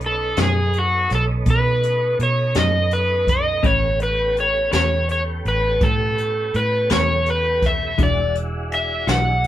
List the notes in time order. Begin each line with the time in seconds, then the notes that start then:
Already playing: B1 A3 B3 C#4 D#4
0.01 closed hi-hat
0.06 A4
0.37 F#2 B2 A3 C#4 D#4, snare, closed hi-hat
0.42 G#4
0.73 closed hi-hat
0.79 F#4
1.10 B1, snare, closed hi-hat
1.15 A4
1.46 B2, kick, closed hi-hat
1.50 B4
1.83 closed hi-hat
2.19 B2 C#5, closed hi-hat
2.55 F#2 B2 A3 C#4 D#4, snare, closed hi-hat
2.59 D#5
2.91 B4, closed hi-hat
3.27 D#5, kick, closed hi-hat
3.63 A1 A3 B3 C#4 G4 B4 C#5, kick, closed hi-hat
4.00 B4, closed hi-hat
4.37 C#5, closed hi-hat
4.72 E2 A3 C#4 G4 B4 C#5, snare, closed hi-hat
5.09 C#5, closed hi-hat
5.45 A1 B4, closed hi-hat
5.81 A2 A4, kick, closed hi-hat
6.18 closed hi-hat
6.54 A2 B4, closed hi-hat
6.90 E2 A3 C#4 G4 B4 C#5, snare, closed hi-hat
7.26 B4, closed hi-hat
7.62 E5, kick, snare, closed hi-hat
7.98 E1 E3 G#3 D4 E4 F#4, kick, closed hi-hat
8.03 D5
8.35 closed hi-hat
8.72 E5, closed hi-hat
9.07 B1 E3 G#3 D4 F#4 F#5, snare, closed hi-hat
9.44 closed hi-hat